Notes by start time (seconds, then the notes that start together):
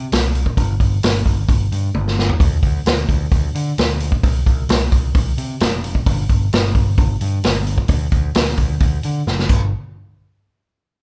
0.12 C2, snare, open hi-hat
0.35 open hi-hat
0.46 kick
0.57 G1, kick, open hi-hat
0.80 G1, kick, open hi-hat
1.03 G1, snare, open hi-hat
1.26 G1, kick, open hi-hat
1.48 G1, kick, open hi-hat
1.72 G2, open hi-hat
1.95 G1, high tom
2.08 snare
2.19 snare
2.29 floor tom
2.40 D2, kick, open hi-hat
2.63 D2, kick, open hi-hat
2.86 D2, snare, open hi-hat
3.09 D2, kick, open hi-hat
3.31 D2, kick, open hi-hat
3.55 D3, open hi-hat
3.78 D2, snare, open hi-hat
4.00 open hi-hat
4.12 kick
4.23 C2, kick, open hi-hat
4.46 C2, kick, open hi-hat
4.69 C2, snare, open hi-hat
4.92 C2, kick, open hi-hat
5.15 C2, kick, open hi-hat
5.38 C3, open hi-hat
5.60 F1, snare, open hi-hat
5.84 open hi-hat
5.95 kick
6.06 G1, kick, open hi-hat
6.29 G1, kick, open hi-hat
6.53 G1, snare, open hi-hat
6.65 snare
6.75 G1, kick, open hi-hat
6.98 G1, kick, open hi-hat
7.21 G2, open hi-hat
7.44 G1, snare, open hi-hat
7.67 open hi-hat
7.78 kick
7.88 D2, kick, open hi-hat
8.12 D2, kick, open hi-hat
8.35 D2, snare, open hi-hat
8.47 snare
8.58 D2, kick, open hi-hat
8.80 D2, kick, open hi-hat
9.03 D3, open hi-hat
9.27 F#1, snare
9.39 snare
9.49 G1, kick, crash